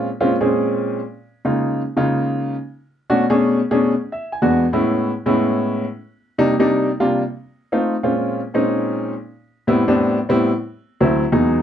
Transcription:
0.21 A#2 G#3 C4 C#4 F4
0.41 A#2 G#3 C4 C#4 G#4
1.45 C#3 G#3 A#3 D#4 F4
1.96 C#3 G#3 A#3 D#4 F4
3.10 B2 A3 C#4 D4 F#4
3.30 B2 A3 C#4 D4 G#4
3.71 B2 A3 C#4 D4 G#4
4.12 E5
4.32 G#5
4.42 E2 G#3 B3 D4 F#4
4.73 A2 G#3 B3 C#4 E4
5.26 A2 G#3 B3 C#4 E4
6.38 C3 G3 A#3 D4 D#4
6.59 C3 G3 A#3 D4 D#4
7.00 C3 G3 A#3 D4 F4
7.72 A3 C4 D#4 F4
8.03 A#2 G#3 C4 C#4 F4
8.54 A#2 G#3 C4 C#4 D#4
9.67 A2 G3 B3 C4 E4
9.88 A2 G3 B3 C4 D4
10.29 A2 G3 B3 C4 E4
11.00 D2 F#3 A3 C4 E4
11.32 E2 F#3 G#3 B3 D#4

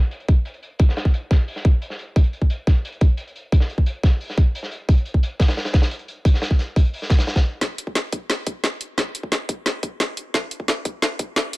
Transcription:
0.11 closed hi-hat
0.20 closed hi-hat
0.28 kick, closed hi-hat
0.45 closed hi-hat
0.54 closed hi-hat
0.63 closed hi-hat
0.79 kick, closed hi-hat
0.89 snare
0.97 snare, closed hi-hat
1.05 kick
1.14 closed hi-hat
1.31 kick, snare, closed hi-hat
1.48 open hi-hat
1.56 snare
1.65 kick, closed hi-hat
1.82 closed hi-hat
1.90 snare
1.99 closed hi-hat
2.16 kick, closed hi-hat
2.24 closed hi-hat
2.33 closed hi-hat
2.42 kick
2.50 closed hi-hat
2.67 kick, snare, closed hi-hat
2.85 closed hi-hat
2.92 closed hi-hat
3.01 kick, closed hi-hat
3.17 closed hi-hat
3.27 closed hi-hat
3.36 closed hi-hat
3.52 kick, closed hi-hat
3.60 snare
3.69 closed hi-hat
3.78 kick
3.86 closed hi-hat
4.03 kick, snare, closed hi-hat
4.20 open hi-hat
4.30 snare
4.38 kick, closed hi-hat
4.55 closed hi-hat
4.63 snare
4.71 closed hi-hat
4.89 kick, closed hi-hat
4.98 closed hi-hat
5.05 closed hi-hat
5.14 kick
5.23 closed hi-hat
5.40 kick, snare, closed hi-hat
5.48 snare, closed hi-hat
5.57 snare, closed hi-hat
5.65 snare, closed hi-hat
5.73 kick, snare, closed hi-hat
5.82 snare, closed hi-hat
5.91 closed hi-hat
5.99 closed hi-hat
6.08 closed hi-hat
6.25 kick, closed hi-hat
6.34 snare
6.42 snare, closed hi-hat
6.51 kick
6.59 snare, closed hi-hat
6.76 kick, closed hi-hat
6.94 open hi-hat
7.02 snare
7.10 kick, snare, closed hi-hat
7.19 snare, closed hi-hat
7.27 snare, closed hi-hat
7.35 kick, snare, closed hi-hat
7.61 kick, snare, closed hi-hat
7.78 closed hi-hat
7.87 kick
7.95 snare, closed hi-hat
8.12 kick, closed hi-hat
8.30 snare, closed hi-hat
8.47 kick, closed hi-hat
8.64 snare, closed hi-hat
8.81 closed hi-hat
8.98 kick, snare, closed hi-hat
9.15 closed hi-hat
9.23 kick
9.32 snare, closed hi-hat
9.49 kick, closed hi-hat
9.66 snare, closed hi-hat
9.83 kick, closed hi-hat
10.00 snare, closed hi-hat
10.17 closed hi-hat
10.34 kick, snare, closed hi-hat
10.51 closed hi-hat
10.60 kick
10.68 snare, closed hi-hat
10.85 kick, closed hi-hat
11.02 snare, closed hi-hat
11.19 kick, closed hi-hat
11.36 snare, closed hi-hat
11.53 closed hi-hat

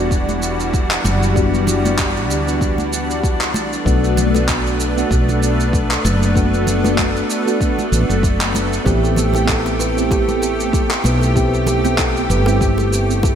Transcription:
Already playing: E1 E3 G3 B3 D4 F#4
0.11 kick, shaker
0.29 high conga, shaker
0.43 shaker
0.60 shaker
0.74 kick, shaker
0.91 clap, shaker
1.04 F#1, high conga, shaker
1.23 shaker
1.34 G3 B3 D4 F#4, kick, shaker
1.54 shaker
1.67 low conga, shaker
1.84 G3 B3 D4 F#4, high conga, shaker
1.99 kick, clap, shaker
2.17 shaker
2.30 D2, shaker
2.46 G3 B3 D4 F#4, shaker
2.61 kick, shaker
2.78 high conga, shaker
2.93 shaker
3.11 shaker
3.23 kick, shaker
3.41 clap, shaker
3.54 B1 A3 B3, high conga, shaker
3.73 shaker
3.85 B1 A3 B3 D4 F#4, kick, shaker
4.04 shaker
4.17 low conga, shaker
4.34 A3 B3 D4 F#4, high conga, shaker
4.48 kick, clap, shaker
4.67 shaker
4.80 shaker
4.97 A3 B3 D4 F#4, shaker
5.11 B1, kick, shaker
5.29 high conga, shaker
5.43 shaker
5.60 shaker
5.73 kick, shaker
5.91 clap, shaker
6.05 F#1, high conga, shaker
6.23 shaker
6.35 A3 B3 D4 F#4, kick, shaker
6.54 shaker
6.67 low conga, shaker
6.83 A3 B3 D4 F#4, high conga, shaker
6.98 kick, clap, shaker
7.16 shaker
7.30 shaker
7.45 A3 B3 D4 F#4, shaker
7.61 kick, shaker
7.79 high conga, shaker
7.92 A1, shaker
8.09 F#1, shaker
8.23 kick, shaker
8.41 clap, shaker
8.55 high conga, shaker
8.73 shaker
8.84 A1 B3 C4 E4 G4, kick, high bongo, shaker
9.03 A4, shaker
9.16 G4, low conga, shaker
9.33 B3 C4 E4 G4, high bongo, high conga, shaker
9.48 A4, kick, clap, shaker
9.66 high bongo, shaker
9.79 B4, shaker
9.96 B3 C4 E4 G4, shaker
10.11 G4, kick, high bongo, shaker
10.28 A4, high conga, shaker
10.42 G4, high bongo, shaker
10.60 shaker
10.73 A4, kick, shaker
10.90 clap, high bongo, shaker
11.04 B1 B4, high conga, shaker
11.22 high bongo, shaker
11.35 B3 C4 E4 G4, kick, shaker
11.54 A4, shaker
11.66 G4, high bongo, low conga, shaker
11.84 B3 C4 E4 G4, high conga, shaker
11.98 A4, kick, clap, high bongo, shaker
12.17 shaker
12.30 G1 B4, shaker
12.46 B3 C4 E4 G4, high bongo, shaker
12.61 G4, kick, shaker
12.78 A4, high bongo, high conga, shaker
12.92 G4, shaker
13.11 shaker
13.23 A4, kick, high bongo, shaker

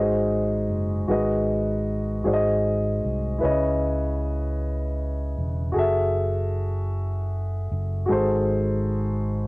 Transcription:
Already playing: G#1 G#2 F#4 G#4 D#5
0.00 C5
0.70 F#1
1.08 G#1 G#2 F#4 G#4 B4 D#5
2.24 G#1 G#2 F#4 G#4 C5 D5
2.33 D#5
3.05 C2
3.38 C#3 E4 B4
3.43 C#2 C#5 D#5
5.38 E1
5.72 F#4 G#4
5.76 F#1 A4 E5
7.71 F#1
8.06 G#2 F#4 G#4
8.10 G#1 A4 C5

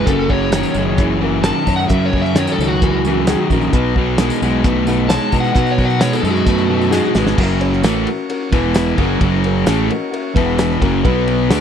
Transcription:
0.06 F#1 F#2 C#3 C#4 F#4 A4 A#4, kick, closed hi-hat
0.29 F#2 C#3 C#4 F#4 G#4 C#5, kick
0.52 F#2 D#3 C#4 F#4 A#4, snare, closed hi-hat, tambourine
0.63 tambourine
0.74 F#1 F#2 D#3 C#4 F#4, tambourine
0.79 G#4
0.98 F#2 E3 C#4 F#4 G#4, kick, closed hi-hat
1.21 F#2 E3 C#4 F#4 A#4
1.43 F#2 D#3 C#4 F#4 A#4 A5, snare, closed hi-hat, tambourine
1.66 F#2 D#3 C#4 F#4 C#5, kick, tambourine
1.76 F#5, tambourine
1.88 F#2 C#3 C#4 F#4 A#4 E5, kick, closed hi-hat
2.06 C#5
2.12 F#2 C#3 C#4 F#4 A#4, kick
2.16 C#3
2.22 E5, snare
2.35 F#2 D#3 C#4 F#4 A#4 C#5, snare, closed hi-hat, tambourine
2.47 tambourine
2.52 A4
2.58 C#2 F#2 D#3 C#4 F#4 C#5, tambourine
2.67 F#4
2.81 F#2 E3 C#4 F#4 A#4, kick, closed hi-hat
3.04 F#2 E3 C#4 F#4 A#4, tambourine
3.27 F#2 D#3 C#4 F#4 G#4, snare, closed hi-hat, tambourine
3.50 A#1 F#2 D#3 C#4 F#4 A#4, kick, tambourine
3.61 tambourine
3.71 B1 B2 F#3 D#4 F#4 B4, kick, closed hi-hat
3.94 B2 F#3 D#4 F#4 B4, kick
4.18 B2 G#3 D#4 F#4 A#4, snare, closed hi-hat, tambourine
4.30 tambourine
4.42 B1 B2 G#3 D#4 F#4 B4, tambourine
4.63 B2 A3 D#4 F#4 B4, kick, closed hi-hat
4.87 B2 A3 D#4 F#4 B4, tambourine
5.08 B2 G#3 D#4 F#4 C#5 A5, snare, closed hi-hat, tambourine
5.32 B2 G#3 D#4 F#4 B4, kick, tambourine
5.40 F#5, tambourine
5.55 B2 F#3 D#4 F#4 B4 F#5, kick, closed hi-hat, tambourine
5.66 tambourine
5.71 C#5
5.78 B2 F#3 D#4 F#4 A#4, kick, tambourine
5.85 F#5
5.90 tambourine
5.99 B2 G#3 D#4 F#4 B4 C#5, snare, closed hi-hat, tambourine
6.13 A4, tambourine
6.23 F#2 B2 G#3 D#4 F#4 G#4, tambourine
6.30 F#4
6.36 tambourine
6.46 B2 A3 D#4 F#4 B4, kick, closed hi-hat, tambourine
6.58 tambourine
6.69 B2 A3 D#4 F#4 B4
6.81 tambourine
6.90 B2 G#3 D#4 F#4 G#4, snare, tambourine
7.05 tambourine
7.15 G#1 B2 G#3 D#4 F#4 B4, snare, tambourine
7.27 snare, tambourine
7.37 F#1 F#2 A#3 C#4 F#4 A#4 C#5, kick, crash
7.41 C#3 F#3
7.60 C#4 F#4 C#5, ride
7.73 snare
7.83 A1 A2 E3 A3 C#4 F#4 A#4, snare, ride, tambourine
8.06 C#4 F#4 A#4, ride
8.29 C#4 F#4 A#4, ride
8.52 E1 E2 B2 E3 B3 E4 B4, kick, ride
8.74 snare, ride, tambourine
8.87 snare
8.98 F#1 F#2 C#3 F#3 A#3 C#4 F#4 A#4 C#5, kick, ride
9.21 F#1 F#2 C#3 F#3, kick, ride
9.44 C#4 F#4 A#4, ride
9.66 A1 A2 E3 A3 C#4 F#4 G#4, snare, ride, tambourine
9.90 C#4 F#4 A#4 D#5, ride
10.11 C#4 F#4 A#4 E5, ride
10.34 E1 E2 B2 B3 E4 B4, kick, ride
10.38 E3
10.45 F#5
10.57 G#5, snare, ride, tambourine
10.71 snare
10.81 F#1 F#2 C#3 F#3 C#4 F#4 A#4 A#5, kick, ride
11.04 B1 B2 F#3 B3 F#4 B4, kick, ride
11.27 B3 F#4 B4, ride
11.50 D2 D3 A3 B3 D4 F#4 G#4, snare, ride, tambourine

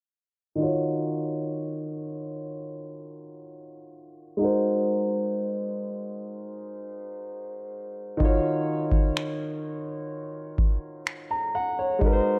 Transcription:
0.56 D#3 D#4 F4
0.61 F#4 C#5
4.37 G#3 D#4 F#4
4.42 A#4 C5
8.17 D#3 D#4 F4, kick
8.23 F#4 C#5
8.92 kick
9.17 finger snap
10.58 kick
11.07 finger snap
11.31 A#5
11.55 F#5
11.79 C#5
11.99 G#3 D#4 F#4, kick
12.04 A#4 B4
12.13 C5

